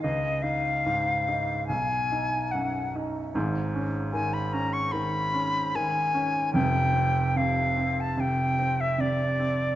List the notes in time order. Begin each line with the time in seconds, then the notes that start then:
0.02 C#2 D#5
0.42 D#4 F5
0.86 G#2
1.29 D#4
1.67 B1 G#5
2.12 D#4
2.51 F#2 F#5
2.96 D#4
3.35 G#1 G#2
3.75 C#4
4.12 D#3 G#5
4.33 B5
4.53 C#4 A#5
4.73 C#6
4.92 D#3 B5
5.34 C#4
5.75 D#3 G#5
6.14 C#4
6.53 F1 F2 G5
6.94 C4
7.36 C3 F5
7.77 C4
8.00 A5
8.17 C3 G5
8.59 C4
8.81 E5
8.98 C3 D5
9.39 C4